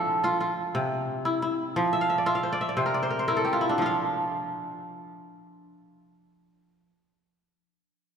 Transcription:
kora
Already playing: F3 D4 F4 G4 A4
0.24 F4
0.41 F4
0.75 C3
1.25 E4
1.42 E4
1.76 F3
1.93 E5
2.01 F5
2.10 E5
2.18 D5
2.26 F4 E5
2.35 F5
2.43 C5
2.52 D5
2.61 E5
2.69 D5
2.77 C3 C5
2.86 A#4
2.94 D5
3.03 C5
3.10 A#4
3.19 C5
3.28 E4 A#4
3.37 A4
3.45 G4
3.53 F4
3.61 E4
3.69 D4
3.78 F3 F4
3.86 F5

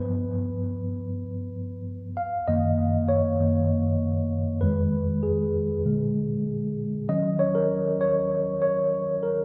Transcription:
tine electric piano
Already playing: G2 F3 B3 B4
2.17 F5
2.48 F#2 D#3 A#3 D#5
3.08 C#5
3.39 F#2 D#3 A#3
4.61 F2 D#3 G#3 B4
5.23 G#4
5.85 A#2 D3 G#3
7.08 D#3 F#3 C#4 D#5
7.39 C#5
7.55 A#4
8.01 C#5
8.62 C#5
9.23 A#4

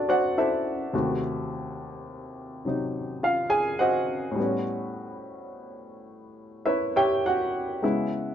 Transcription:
grand piano
Already playing: D2 C3 F#3 D4 E4 F#4 A4 D5
0.09 F#4 C5 D5 F#5
0.38 E4 A4 C5 E5
0.93 D#2 C3 A3 F#4
2.65 C3 F#3 D#4
3.23 F4 F5
3.50 G#4 G#5
3.79 F#4 C5 D#5 F#5
4.31 A2
4.35 G3
4.40 B3 C#4
6.66 E4 B4 C#5 E5
6.96 G4 C#5 E5 G5
7.26 F#4 F#5
7.82 C#3 G#3 B3 E4

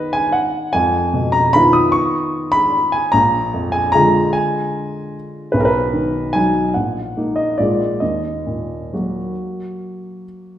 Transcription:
grand piano
Already playing: D#3 B3 D#4 B4
0.13 G#5
0.32 F#5
0.73 F2 G#5
1.14 B2
1.32 A#5
1.53 D#3 B3 F4 B5
1.73 D#6
1.92 C#6
2.52 B5
2.92 G#5
3.12 A#1 A#5
3.54 F2
3.72 G#5
3.92 D3 G#3 F4 A#5
4.33 G#5
5.52 B1 B4
5.60 A#4
5.65 B4
5.94 D#3
6.33 F#3 D#4 G#5
6.74 A#1 F#5
7.17 A#3 D#4
7.36 D#5
7.58 A#1 G#3 A#3 F4 D5
8.00 D#2 D#5
8.47 A#2
8.93 F#3 A#3 F#4

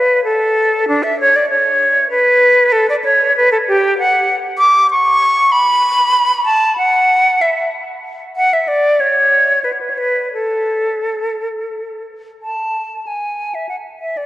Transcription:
flute
Already playing: B4
0.25 A4
0.88 D4
1.03 E5
1.20 C#5
1.36 D5
1.50 C#5
2.10 B4
2.72 A4
2.89 D5
3.04 C#5
3.37 B4
3.52 A4
3.68 G4
3.98 F#5
4.58 D6
4.91 C#6
5.52 B5
6.46 A5
6.78 F#5
7.41 E5
8.36 F#5
8.53 E5
8.68 D5
9.00 C#5
9.64 B4
9.72 C#5
9.81 B4
9.90 C#5
9.98 B4
10.33 A4
12.42 A5
13.07 G#5
13.55 E5
13.69 F#5
14.01 E5
14.17 D5

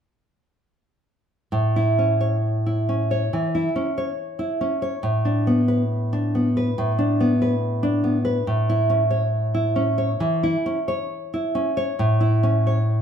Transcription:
nylon-string guitar
1.52 A2
1.76 E4
1.99 C#4
2.21 C#5
2.66 E4
2.89 C#4
3.11 C#5
3.33 E3
3.55 E4
3.76 C#4
3.98 C#5
4.39 E4
4.61 C#4
4.82 C#5
5.03 A2
5.25 D4
5.47 B3
5.68 B4
6.13 D4
6.35 B3
6.57 B4
6.78 A2
6.99 D4
7.20 B3
7.42 B4
7.83 D4
8.04 B3
8.25 B4
8.47 A2
8.69 E4
8.90 C#4
9.11 C#5
9.54 E4
9.76 C#4
9.98 C#5
10.20 E3
10.43 E4
10.66 C#4
10.88 C#5
11.34 E4
11.55 C#4
11.77 C#5
11.99 A2
12.20 E4
12.43 C#4
12.67 C#5

